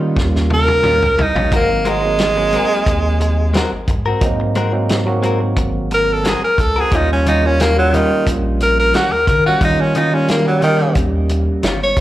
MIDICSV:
0, 0, Header, 1, 7, 480
1, 0, Start_track
1, 0, Tempo, 674916
1, 1080, Time_signature, 4, 2, 24, 8
1, 8538, End_track
2, 0, Start_track
2, 0, Title_t, "Tenor saxophone"
2, 0, Program_c, 0, 66
2, 381, Note_on_c, 0, 70, 107
2, 863, Note_on_c, 0, 63, 86
2, 873, Note_off_c, 0, 70, 0
2, 1084, Note_off_c, 0, 63, 0
2, 1107, Note_on_c, 0, 58, 88
2, 1341, Note_on_c, 0, 56, 103
2, 1352, Note_off_c, 0, 58, 0
2, 2742, Note_off_c, 0, 56, 0
2, 4225, Note_on_c, 0, 70, 94
2, 4361, Note_on_c, 0, 69, 91
2, 4371, Note_off_c, 0, 70, 0
2, 4465, Note_on_c, 0, 68, 82
2, 4476, Note_off_c, 0, 69, 0
2, 4570, Note_off_c, 0, 68, 0
2, 4582, Note_on_c, 0, 70, 80
2, 4698, Note_on_c, 0, 69, 86
2, 4709, Note_off_c, 0, 70, 0
2, 4836, Note_on_c, 0, 68, 89
2, 4846, Note_off_c, 0, 69, 0
2, 4948, Note_on_c, 0, 63, 95
2, 4959, Note_off_c, 0, 68, 0
2, 5052, Note_off_c, 0, 63, 0
2, 5067, Note_on_c, 0, 61, 83
2, 5164, Note_off_c, 0, 61, 0
2, 5181, Note_on_c, 0, 63, 90
2, 5304, Note_on_c, 0, 61, 93
2, 5315, Note_off_c, 0, 63, 0
2, 5413, Note_on_c, 0, 58, 95
2, 5424, Note_off_c, 0, 61, 0
2, 5524, Note_off_c, 0, 58, 0
2, 5537, Note_on_c, 0, 54, 100
2, 5649, Note_on_c, 0, 51, 99
2, 5660, Note_off_c, 0, 54, 0
2, 5878, Note_off_c, 0, 51, 0
2, 6133, Note_on_c, 0, 70, 93
2, 6244, Note_off_c, 0, 70, 0
2, 6254, Note_on_c, 0, 70, 89
2, 6357, Note_off_c, 0, 70, 0
2, 6368, Note_on_c, 0, 66, 88
2, 6485, Note_on_c, 0, 70, 81
2, 6496, Note_off_c, 0, 66, 0
2, 6592, Note_off_c, 0, 70, 0
2, 6603, Note_on_c, 0, 70, 83
2, 6718, Note_off_c, 0, 70, 0
2, 6730, Note_on_c, 0, 66, 84
2, 6834, Note_off_c, 0, 66, 0
2, 6859, Note_on_c, 0, 63, 94
2, 6972, Note_on_c, 0, 61, 87
2, 6983, Note_off_c, 0, 63, 0
2, 7075, Note_off_c, 0, 61, 0
2, 7093, Note_on_c, 0, 63, 88
2, 7210, Note_on_c, 0, 61, 84
2, 7221, Note_off_c, 0, 63, 0
2, 7314, Note_off_c, 0, 61, 0
2, 7327, Note_on_c, 0, 58, 84
2, 7440, Note_off_c, 0, 58, 0
2, 7451, Note_on_c, 0, 54, 80
2, 7555, Note_off_c, 0, 54, 0
2, 7563, Note_on_c, 0, 51, 101
2, 7793, Note_off_c, 0, 51, 0
2, 8415, Note_on_c, 0, 73, 90
2, 8538, Note_off_c, 0, 73, 0
2, 8538, End_track
3, 0, Start_track
3, 0, Title_t, "Clean electric guitar"
3, 0, Program_c, 1, 27
3, 592, Note_on_c, 1, 51, 54
3, 600, Note_on_c, 1, 55, 53
3, 607, Note_on_c, 1, 61, 60
3, 614, Note_on_c, 1, 65, 60
3, 717, Note_off_c, 1, 65, 0
3, 721, Note_off_c, 1, 51, 0
3, 725, Note_off_c, 1, 55, 0
3, 725, Note_off_c, 1, 61, 0
3, 963, Note_on_c, 1, 65, 56
3, 976, Note_on_c, 1, 61, 49
3, 989, Note_on_c, 1, 55, 48
3, 1074, Note_off_c, 1, 55, 0
3, 1076, Note_off_c, 1, 61, 0
3, 1077, Note_on_c, 1, 56, 68
3, 1079, Note_off_c, 1, 65, 0
3, 1079, Note_on_c, 1, 60, 70
3, 1086, Note_on_c, 1, 66, 81
3, 1092, Note_on_c, 1, 70, 80
3, 1193, Note_off_c, 1, 70, 0
3, 1202, Note_off_c, 1, 66, 0
3, 1203, Note_off_c, 1, 56, 0
3, 1205, Note_off_c, 1, 60, 0
3, 1316, Note_on_c, 1, 56, 79
3, 1322, Note_on_c, 1, 60, 80
3, 1329, Note_on_c, 1, 66, 88
3, 1332, Note_on_c, 1, 70, 79
3, 1436, Note_off_c, 1, 70, 0
3, 1443, Note_off_c, 1, 56, 0
3, 1444, Note_off_c, 1, 66, 0
3, 1446, Note_off_c, 1, 60, 0
3, 1799, Note_on_c, 1, 56, 55
3, 1806, Note_on_c, 1, 60, 55
3, 1814, Note_on_c, 1, 66, 60
3, 1820, Note_on_c, 1, 70, 62
3, 1908, Note_off_c, 1, 70, 0
3, 1916, Note_off_c, 1, 66, 0
3, 1921, Note_off_c, 1, 60, 0
3, 1925, Note_off_c, 1, 56, 0
3, 2515, Note_on_c, 1, 56, 62
3, 2525, Note_on_c, 1, 60, 64
3, 2533, Note_on_c, 1, 66, 72
3, 2537, Note_on_c, 1, 70, 70
3, 2637, Note_off_c, 1, 70, 0
3, 2643, Note_off_c, 1, 56, 0
3, 2645, Note_off_c, 1, 66, 0
3, 2648, Note_off_c, 1, 60, 0
3, 2885, Note_on_c, 1, 70, 61
3, 2897, Note_on_c, 1, 66, 53
3, 2907, Note_on_c, 1, 60, 48
3, 3025, Note_off_c, 1, 70, 0
3, 3031, Note_off_c, 1, 66, 0
3, 3036, Note_off_c, 1, 60, 0
3, 3242, Note_on_c, 1, 56, 84
3, 3246, Note_on_c, 1, 60, 97
3, 3253, Note_on_c, 1, 66, 88
3, 3256, Note_on_c, 1, 70, 103
3, 3361, Note_off_c, 1, 70, 0
3, 3366, Note_off_c, 1, 56, 0
3, 3366, Note_off_c, 1, 66, 0
3, 3368, Note_off_c, 1, 60, 0
3, 3716, Note_on_c, 1, 56, 59
3, 3723, Note_on_c, 1, 60, 60
3, 3730, Note_on_c, 1, 66, 64
3, 3738, Note_on_c, 1, 70, 64
3, 3835, Note_off_c, 1, 70, 0
3, 3841, Note_off_c, 1, 66, 0
3, 3844, Note_off_c, 1, 56, 0
3, 3845, Note_off_c, 1, 60, 0
3, 4441, Note_on_c, 1, 56, 54
3, 4448, Note_on_c, 1, 60, 60
3, 4456, Note_on_c, 1, 66, 58
3, 4461, Note_on_c, 1, 70, 60
3, 4560, Note_off_c, 1, 70, 0
3, 4565, Note_off_c, 1, 66, 0
3, 4566, Note_off_c, 1, 56, 0
3, 4570, Note_off_c, 1, 60, 0
3, 4808, Note_on_c, 1, 70, 57
3, 4822, Note_on_c, 1, 66, 51
3, 4833, Note_on_c, 1, 60, 48
3, 4922, Note_off_c, 1, 70, 0
3, 4923, Note_on_c, 1, 51, 68
3, 4928, Note_off_c, 1, 66, 0
3, 4929, Note_on_c, 1, 55, 79
3, 4933, Note_off_c, 1, 60, 0
3, 4936, Note_on_c, 1, 61, 77
3, 4941, Note_on_c, 1, 65, 86
3, 5039, Note_off_c, 1, 65, 0
3, 5047, Note_off_c, 1, 51, 0
3, 5048, Note_off_c, 1, 61, 0
3, 5050, Note_off_c, 1, 55, 0
3, 5166, Note_on_c, 1, 51, 74
3, 5175, Note_on_c, 1, 55, 81
3, 5178, Note_on_c, 1, 61, 89
3, 5181, Note_on_c, 1, 65, 89
3, 5285, Note_off_c, 1, 65, 0
3, 5288, Note_off_c, 1, 51, 0
3, 5291, Note_off_c, 1, 61, 0
3, 5293, Note_off_c, 1, 55, 0
3, 5641, Note_on_c, 1, 51, 56
3, 5652, Note_on_c, 1, 55, 59
3, 5658, Note_on_c, 1, 61, 59
3, 5666, Note_on_c, 1, 65, 67
3, 5765, Note_off_c, 1, 65, 0
3, 5766, Note_off_c, 1, 51, 0
3, 5770, Note_off_c, 1, 61, 0
3, 5772, Note_off_c, 1, 55, 0
3, 6359, Note_on_c, 1, 51, 57
3, 6369, Note_on_c, 1, 55, 58
3, 6375, Note_on_c, 1, 61, 57
3, 6383, Note_on_c, 1, 65, 59
3, 6479, Note_off_c, 1, 65, 0
3, 6484, Note_off_c, 1, 51, 0
3, 6486, Note_off_c, 1, 61, 0
3, 6489, Note_off_c, 1, 55, 0
3, 6730, Note_on_c, 1, 65, 58
3, 6743, Note_on_c, 1, 61, 51
3, 6752, Note_on_c, 1, 55, 44
3, 6867, Note_off_c, 1, 65, 0
3, 6874, Note_off_c, 1, 61, 0
3, 6878, Note_off_c, 1, 55, 0
3, 7081, Note_on_c, 1, 51, 80
3, 7088, Note_on_c, 1, 55, 82
3, 7092, Note_on_c, 1, 61, 87
3, 7097, Note_on_c, 1, 65, 93
3, 7201, Note_off_c, 1, 65, 0
3, 7203, Note_off_c, 1, 61, 0
3, 7205, Note_off_c, 1, 51, 0
3, 7209, Note_off_c, 1, 55, 0
3, 7553, Note_on_c, 1, 51, 59
3, 7565, Note_on_c, 1, 55, 60
3, 7573, Note_on_c, 1, 61, 63
3, 7577, Note_on_c, 1, 65, 63
3, 7674, Note_off_c, 1, 65, 0
3, 7681, Note_off_c, 1, 51, 0
3, 7682, Note_off_c, 1, 61, 0
3, 7687, Note_off_c, 1, 55, 0
3, 8273, Note_on_c, 1, 51, 52
3, 8280, Note_on_c, 1, 55, 52
3, 8288, Note_on_c, 1, 61, 57
3, 8294, Note_on_c, 1, 65, 64
3, 8392, Note_off_c, 1, 65, 0
3, 8399, Note_off_c, 1, 61, 0
3, 8400, Note_off_c, 1, 51, 0
3, 8403, Note_off_c, 1, 55, 0
3, 8538, End_track
4, 0, Start_track
4, 0, Title_t, "Tine electric piano"
4, 0, Program_c, 2, 4
4, 0, Note_on_c, 2, 55, 70
4, 0, Note_on_c, 2, 58, 65
4, 0, Note_on_c, 2, 61, 61
4, 0, Note_on_c, 2, 65, 77
4, 616, Note_off_c, 2, 55, 0
4, 618, Note_off_c, 2, 58, 0
4, 621, Note_off_c, 2, 61, 0
4, 622, Note_off_c, 2, 65, 0
4, 1070, Note_on_c, 2, 54, 72
4, 1078, Note_on_c, 2, 58, 60
4, 1080, Note_on_c, 2, 60, 64
4, 1084, Note_on_c, 2, 63, 78
4, 1402, Note_off_c, 2, 54, 0
4, 1405, Note_off_c, 2, 58, 0
4, 1407, Note_off_c, 2, 60, 0
4, 1408, Note_off_c, 2, 63, 0
4, 1439, Note_on_c, 2, 54, 67
4, 1441, Note_on_c, 2, 58, 59
4, 1448, Note_on_c, 2, 60, 60
4, 1453, Note_on_c, 2, 63, 78
4, 1656, Note_off_c, 2, 54, 0
4, 1657, Note_off_c, 2, 58, 0
4, 1661, Note_off_c, 2, 60, 0
4, 1663, Note_off_c, 2, 63, 0
4, 1678, Note_on_c, 2, 54, 67
4, 1683, Note_on_c, 2, 58, 64
4, 1691, Note_on_c, 2, 60, 63
4, 1695, Note_on_c, 2, 63, 71
4, 2539, Note_off_c, 2, 54, 0
4, 2541, Note_off_c, 2, 58, 0
4, 2545, Note_off_c, 2, 60, 0
4, 2547, Note_off_c, 2, 63, 0
4, 2992, Note_on_c, 2, 54, 83
4, 2995, Note_on_c, 2, 58, 76
4, 3001, Note_on_c, 2, 60, 78
4, 3002, Note_on_c, 2, 63, 97
4, 3323, Note_off_c, 2, 54, 0
4, 3324, Note_off_c, 2, 58, 0
4, 3327, Note_off_c, 2, 60, 0
4, 3328, Note_off_c, 2, 63, 0
4, 3355, Note_on_c, 2, 54, 81
4, 3357, Note_on_c, 2, 58, 77
4, 3363, Note_on_c, 2, 60, 80
4, 3369, Note_on_c, 2, 63, 91
4, 3574, Note_off_c, 2, 54, 0
4, 3575, Note_off_c, 2, 58, 0
4, 3579, Note_off_c, 2, 60, 0
4, 3581, Note_off_c, 2, 63, 0
4, 3596, Note_on_c, 2, 54, 89
4, 3602, Note_on_c, 2, 58, 72
4, 3606, Note_on_c, 2, 60, 74
4, 3610, Note_on_c, 2, 66, 87
4, 4458, Note_off_c, 2, 54, 0
4, 4461, Note_off_c, 2, 58, 0
4, 4463, Note_off_c, 2, 60, 0
4, 4465, Note_off_c, 2, 66, 0
4, 4912, Note_on_c, 2, 55, 71
4, 4917, Note_on_c, 2, 58, 66
4, 4921, Note_on_c, 2, 61, 70
4, 4926, Note_on_c, 2, 65, 83
4, 5243, Note_off_c, 2, 55, 0
4, 5245, Note_off_c, 2, 58, 0
4, 5247, Note_off_c, 2, 61, 0
4, 5250, Note_off_c, 2, 65, 0
4, 5278, Note_on_c, 2, 55, 68
4, 5283, Note_on_c, 2, 58, 65
4, 5284, Note_on_c, 2, 61, 67
4, 5294, Note_on_c, 2, 65, 79
4, 5496, Note_off_c, 2, 55, 0
4, 5498, Note_off_c, 2, 58, 0
4, 5499, Note_off_c, 2, 61, 0
4, 5504, Note_off_c, 2, 65, 0
4, 5521, Note_on_c, 2, 55, 71
4, 5524, Note_on_c, 2, 58, 64
4, 5531, Note_on_c, 2, 61, 64
4, 5538, Note_on_c, 2, 65, 81
4, 6380, Note_off_c, 2, 55, 0
4, 6381, Note_off_c, 2, 58, 0
4, 6385, Note_off_c, 2, 61, 0
4, 6388, Note_off_c, 2, 65, 0
4, 6833, Note_on_c, 2, 55, 72
4, 6833, Note_on_c, 2, 58, 64
4, 6838, Note_on_c, 2, 61, 67
4, 6848, Note_on_c, 2, 65, 76
4, 7162, Note_off_c, 2, 55, 0
4, 7163, Note_off_c, 2, 58, 0
4, 7165, Note_off_c, 2, 61, 0
4, 7170, Note_off_c, 2, 65, 0
4, 7191, Note_on_c, 2, 55, 73
4, 7198, Note_on_c, 2, 58, 62
4, 7200, Note_on_c, 2, 61, 65
4, 7206, Note_on_c, 2, 65, 81
4, 7412, Note_off_c, 2, 55, 0
4, 7415, Note_off_c, 2, 58, 0
4, 7416, Note_off_c, 2, 61, 0
4, 7419, Note_off_c, 2, 65, 0
4, 7428, Note_on_c, 2, 55, 66
4, 7434, Note_on_c, 2, 58, 64
4, 7439, Note_on_c, 2, 61, 62
4, 7444, Note_on_c, 2, 67, 78
4, 8292, Note_off_c, 2, 55, 0
4, 8294, Note_off_c, 2, 58, 0
4, 8297, Note_off_c, 2, 61, 0
4, 8299, Note_off_c, 2, 67, 0
4, 8538, End_track
5, 0, Start_track
5, 0, Title_t, "Analog synth bass"
5, 0, Program_c, 3, 38
5, 0, Note_on_c, 3, 51, 102
5, 118, Note_on_c, 3, 39, 95
5, 129, Note_off_c, 3, 51, 0
5, 493, Note_off_c, 3, 39, 0
5, 604, Note_on_c, 3, 39, 88
5, 714, Note_off_c, 3, 39, 0
5, 727, Note_on_c, 3, 37, 81
5, 829, Note_off_c, 3, 37, 0
5, 837, Note_on_c, 3, 36, 89
5, 951, Note_off_c, 3, 36, 0
5, 962, Note_on_c, 3, 34, 83
5, 1066, Note_off_c, 3, 34, 0
5, 1079, Note_on_c, 3, 32, 106
5, 1829, Note_off_c, 3, 32, 0
5, 2037, Note_on_c, 3, 39, 104
5, 2511, Note_off_c, 3, 39, 0
5, 2649, Note_on_c, 3, 32, 37
5, 2757, Note_on_c, 3, 44, 91
5, 2768, Note_off_c, 3, 32, 0
5, 2946, Note_off_c, 3, 44, 0
5, 2995, Note_on_c, 3, 44, 101
5, 3958, Note_on_c, 3, 32, 100
5, 3968, Note_off_c, 3, 44, 0
5, 4521, Note_off_c, 3, 32, 0
5, 4677, Note_on_c, 3, 37, 90
5, 4866, Note_off_c, 3, 37, 0
5, 4919, Note_on_c, 3, 39, 109
5, 5669, Note_off_c, 3, 39, 0
5, 5881, Note_on_c, 3, 34, 102
5, 6353, Note_off_c, 3, 34, 0
5, 6477, Note_on_c, 3, 39, 37
5, 6595, Note_on_c, 3, 51, 91
5, 6605, Note_off_c, 3, 39, 0
5, 6784, Note_off_c, 3, 51, 0
5, 6834, Note_on_c, 3, 51, 105
5, 7791, Note_on_c, 3, 39, 94
5, 7802, Note_off_c, 3, 51, 0
5, 8168, Note_off_c, 3, 39, 0
5, 8277, Note_on_c, 3, 31, 89
5, 8493, Note_off_c, 3, 31, 0
5, 8509, Note_on_c, 3, 34, 89
5, 8538, Note_off_c, 3, 34, 0
5, 8538, End_track
6, 0, Start_track
6, 0, Title_t, "Muted clean electric guitar strokes"
6, 6, Note_on_c, 9, 29, 43
6, 77, Note_off_c, 9, 29, 0
6, 116, Note_on_c, 9, 29, 45
6, 187, Note_off_c, 9, 29, 0
6, 358, Note_on_c, 9, 29, 40
6, 429, Note_off_c, 9, 29, 0
6, 726, Note_on_c, 9, 29, 40
6, 797, Note_off_c, 9, 29, 0
6, 837, Note_on_c, 9, 29, 38
6, 908, Note_off_c, 9, 29, 0
6, 1201, Note_on_c, 9, 29, 47
6, 1273, Note_off_c, 9, 29, 0
6, 1444, Note_on_c, 9, 29, 37
6, 1516, Note_off_c, 9, 29, 0
6, 1688, Note_on_c, 9, 29, 41
6, 1759, Note_off_c, 9, 29, 0
6, 1917, Note_on_c, 9, 29, 47
6, 1988, Note_off_c, 9, 29, 0
6, 2037, Note_on_c, 9, 29, 43
6, 2108, Note_off_c, 9, 29, 0
6, 2280, Note_on_c, 9, 29, 42
6, 2351, Note_off_c, 9, 29, 0
6, 2645, Note_on_c, 9, 29, 46
6, 2716, Note_off_c, 9, 29, 0
6, 2768, Note_on_c, 9, 29, 38
6, 2839, Note_off_c, 9, 29, 0
6, 3129, Note_on_c, 9, 29, 45
6, 3200, Note_off_c, 9, 29, 0
6, 3369, Note_on_c, 9, 29, 43
6, 3440, Note_off_c, 9, 29, 0
6, 3605, Note_on_c, 9, 29, 51
6, 3676, Note_off_c, 9, 29, 0
6, 3844, Note_on_c, 9, 29, 50
6, 3915, Note_off_c, 9, 29, 0
6, 3959, Note_on_c, 9, 29, 46
6, 4030, Note_off_c, 9, 29, 0
6, 4205, Note_on_c, 9, 29, 39
6, 4276, Note_off_c, 9, 29, 0
6, 4569, Note_on_c, 9, 29, 40
6, 4640, Note_off_c, 9, 29, 0
6, 4685, Note_on_c, 9, 29, 37
6, 4756, Note_off_c, 9, 29, 0
6, 5048, Note_on_c, 9, 29, 45
6, 5119, Note_off_c, 9, 29, 0
6, 5294, Note_on_c, 9, 29, 42
6, 5365, Note_off_c, 9, 29, 0
6, 5530, Note_on_c, 9, 29, 43
6, 5601, Note_off_c, 9, 29, 0
6, 5774, Note_on_c, 9, 29, 39
6, 5845, Note_off_c, 9, 29, 0
6, 5887, Note_on_c, 9, 29, 38
6, 5958, Note_off_c, 9, 29, 0
6, 6123, Note_on_c, 9, 29, 38
6, 6194, Note_off_c, 9, 29, 0
6, 6487, Note_on_c, 9, 29, 44
6, 6559, Note_off_c, 9, 29, 0
6, 6610, Note_on_c, 9, 29, 41
6, 6681, Note_off_c, 9, 29, 0
6, 6969, Note_on_c, 9, 29, 42
6, 7040, Note_off_c, 9, 29, 0
6, 7209, Note_on_c, 9, 29, 39
6, 7280, Note_off_c, 9, 29, 0
6, 7445, Note_on_c, 9, 29, 43
6, 7516, Note_off_c, 9, 29, 0
6, 7682, Note_on_c, 9, 29, 41
6, 7753, Note_off_c, 9, 29, 0
6, 7795, Note_on_c, 9, 29, 36
6, 7866, Note_off_c, 9, 29, 0
6, 8035, Note_on_c, 9, 29, 41
6, 8107, Note_off_c, 9, 29, 0
6, 8400, Note_on_c, 9, 29, 44
6, 8472, Note_off_c, 9, 29, 0
6, 8512, Note_on_c, 9, 29, 38
6, 8538, Note_off_c, 9, 29, 0
6, 8538, End_track
7, 0, Start_track
7, 0, Title_t, "Drums"
7, 117, Note_on_c, 9, 36, 81
7, 126, Note_on_c, 9, 38, 57
7, 189, Note_off_c, 9, 36, 0
7, 197, Note_off_c, 9, 38, 0
7, 253, Note_on_c, 9, 38, 49
7, 324, Note_off_c, 9, 38, 0
7, 358, Note_on_c, 9, 48, 70
7, 429, Note_off_c, 9, 48, 0
7, 485, Note_on_c, 9, 48, 67
7, 556, Note_off_c, 9, 48, 0
7, 596, Note_on_c, 9, 47, 80
7, 667, Note_off_c, 9, 47, 0
7, 730, Note_on_c, 9, 45, 74
7, 801, Note_off_c, 9, 45, 0
7, 844, Note_on_c, 9, 43, 88
7, 916, Note_off_c, 9, 43, 0
7, 967, Note_on_c, 9, 43, 79
7, 1039, Note_off_c, 9, 43, 0
7, 1080, Note_on_c, 9, 36, 103
7, 1080, Note_on_c, 9, 42, 83
7, 1151, Note_off_c, 9, 36, 0
7, 1151, Note_off_c, 9, 42, 0
7, 1316, Note_on_c, 9, 42, 59
7, 1388, Note_off_c, 9, 42, 0
7, 1554, Note_on_c, 9, 42, 86
7, 1564, Note_on_c, 9, 38, 106
7, 1625, Note_off_c, 9, 42, 0
7, 1635, Note_off_c, 9, 38, 0
7, 1795, Note_on_c, 9, 42, 59
7, 1866, Note_off_c, 9, 42, 0
7, 2037, Note_on_c, 9, 36, 79
7, 2037, Note_on_c, 9, 42, 78
7, 2108, Note_off_c, 9, 36, 0
7, 2108, Note_off_c, 9, 42, 0
7, 2280, Note_on_c, 9, 42, 60
7, 2351, Note_off_c, 9, 42, 0
7, 2519, Note_on_c, 9, 42, 72
7, 2528, Note_on_c, 9, 38, 110
7, 2590, Note_off_c, 9, 42, 0
7, 2599, Note_off_c, 9, 38, 0
7, 2757, Note_on_c, 9, 42, 58
7, 2758, Note_on_c, 9, 36, 76
7, 2828, Note_off_c, 9, 42, 0
7, 2829, Note_off_c, 9, 36, 0
7, 2995, Note_on_c, 9, 42, 80
7, 2997, Note_on_c, 9, 36, 104
7, 3066, Note_off_c, 9, 42, 0
7, 3068, Note_off_c, 9, 36, 0
7, 3236, Note_on_c, 9, 42, 56
7, 3308, Note_off_c, 9, 42, 0
7, 3479, Note_on_c, 9, 42, 80
7, 3488, Note_on_c, 9, 38, 101
7, 3550, Note_off_c, 9, 42, 0
7, 3560, Note_off_c, 9, 38, 0
7, 3722, Note_on_c, 9, 42, 59
7, 3793, Note_off_c, 9, 42, 0
7, 3957, Note_on_c, 9, 42, 77
7, 3958, Note_on_c, 9, 36, 78
7, 4029, Note_off_c, 9, 36, 0
7, 4029, Note_off_c, 9, 42, 0
7, 4202, Note_on_c, 9, 42, 60
7, 4273, Note_off_c, 9, 42, 0
7, 4442, Note_on_c, 9, 42, 79
7, 4451, Note_on_c, 9, 38, 102
7, 4513, Note_off_c, 9, 42, 0
7, 4522, Note_off_c, 9, 38, 0
7, 4680, Note_on_c, 9, 36, 73
7, 4685, Note_on_c, 9, 42, 60
7, 4752, Note_off_c, 9, 36, 0
7, 4756, Note_off_c, 9, 42, 0
7, 4920, Note_on_c, 9, 36, 106
7, 4921, Note_on_c, 9, 42, 85
7, 4991, Note_off_c, 9, 36, 0
7, 4992, Note_off_c, 9, 42, 0
7, 5166, Note_on_c, 9, 42, 65
7, 5237, Note_off_c, 9, 42, 0
7, 5402, Note_on_c, 9, 42, 88
7, 5412, Note_on_c, 9, 38, 105
7, 5474, Note_off_c, 9, 42, 0
7, 5483, Note_off_c, 9, 38, 0
7, 5645, Note_on_c, 9, 42, 61
7, 5716, Note_off_c, 9, 42, 0
7, 5879, Note_on_c, 9, 36, 84
7, 5882, Note_on_c, 9, 42, 82
7, 5950, Note_off_c, 9, 36, 0
7, 5953, Note_off_c, 9, 42, 0
7, 6119, Note_on_c, 9, 42, 61
7, 6190, Note_off_c, 9, 42, 0
7, 6357, Note_on_c, 9, 42, 78
7, 6366, Note_on_c, 9, 38, 110
7, 6428, Note_off_c, 9, 42, 0
7, 6437, Note_off_c, 9, 38, 0
7, 6595, Note_on_c, 9, 36, 72
7, 6596, Note_on_c, 9, 42, 60
7, 6666, Note_off_c, 9, 36, 0
7, 6667, Note_off_c, 9, 42, 0
7, 6834, Note_on_c, 9, 42, 76
7, 6835, Note_on_c, 9, 36, 104
7, 6905, Note_off_c, 9, 42, 0
7, 6906, Note_off_c, 9, 36, 0
7, 7074, Note_on_c, 9, 42, 57
7, 7145, Note_off_c, 9, 42, 0
7, 7314, Note_on_c, 9, 42, 75
7, 7323, Note_on_c, 9, 38, 106
7, 7385, Note_off_c, 9, 42, 0
7, 7394, Note_off_c, 9, 38, 0
7, 7553, Note_on_c, 9, 42, 55
7, 7624, Note_off_c, 9, 42, 0
7, 7788, Note_on_c, 9, 42, 78
7, 7791, Note_on_c, 9, 36, 86
7, 7859, Note_off_c, 9, 42, 0
7, 7863, Note_off_c, 9, 36, 0
7, 8031, Note_on_c, 9, 42, 59
7, 8102, Note_off_c, 9, 42, 0
7, 8271, Note_on_c, 9, 42, 77
7, 8280, Note_on_c, 9, 38, 109
7, 8342, Note_off_c, 9, 42, 0
7, 8351, Note_off_c, 9, 38, 0
7, 8510, Note_on_c, 9, 42, 60
7, 8511, Note_on_c, 9, 36, 73
7, 8538, Note_off_c, 9, 36, 0
7, 8538, Note_off_c, 9, 42, 0
7, 8538, End_track
0, 0, End_of_file